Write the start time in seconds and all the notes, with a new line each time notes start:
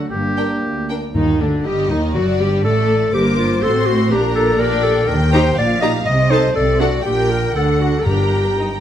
Already playing: F#3 A3 D4
0.10 G1 G2 A#3 D4 G4
0.37 D4 A#4 G5
0.63 D2
0.89 D4 A#4 G5
1.15 D#2 G2 D#3 D#4
1.40 D2 D3 D4
1.65 G1 G2 G3 G4 D#5
1.90 D#2 D#3 D#4
2.15 F#1 F#2 F#3 F#4 D5
2.40 G1 G2 G3 G4
2.65 A1 A2 A3 A4 D5
3.13 G1 G2 A#3 G4 A#4 C5 D6
3.38 F4
3.63 A1 A2 C4 F#4 A4 C6
3.86 F#4
4.11 A#1 A#2 D4 G4 A#4 A#5
4.35 A4
4.60 D4 G4 A#4 D5 G5
4.83 A4
5.08 D#2 D#3 A#4 G5
5.33 D#4 G4 C5 A#5
5.57 A#1 A#2 D5 F5
5.81 D#4 G4 D#5 A#5
6.04 C2 C3 D#5
6.30 D#4 A4 C5 A5
6.53 C2 C3 A4 D5
6.80 D4 F#4 A4 F#5
7.02 A#1 A#2 D4 G4 A#4 G5
7.31 A#4
7.54 D2 D3 D4 A4 F#5
7.80 F#4
7.99 A4
8.05 G1 G2 D4 G4 A#4 G5 A#5
8.58 D#4